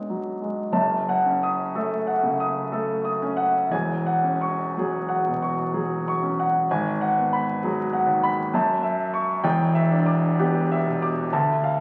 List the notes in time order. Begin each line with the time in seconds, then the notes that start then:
Already playing: B1 G#3 B3 D4
0.09 F#3
0.42 G#3
0.72 F#1 F#2 A5
1.09 F#5
1.26 C#4
1.43 D#6
1.75 A3 A4
2.07 F#5
2.23 C#3
2.40 D#6
2.72 A3 A4
3.05 D#6
3.22 C#4
3.37 F#5
3.70 E1 E2 G#5
4.06 F#5
4.24 C#4
4.41 C#6
4.77 F#3 G#4
5.08 F#5
5.26 B2
5.42 C#6
5.74 F#3 G#4
6.08 C#6
6.23 C#4
6.39 F#5
6.71 G#1 G#5
7.01 F#5
7.18 B3
7.33 B5
7.63 F#3 G#4
7.93 F#5
8.07 D#2
8.23 B5
8.54 F#2 A5
8.83 E5
9.14 C#6
9.44 E1 E2 G5
9.75 E5
9.92 D4
10.06 D6
10.39 B3 G4
10.72 E5
10.86 B2
11.02 D6
11.33 D2 A5
11.64 F5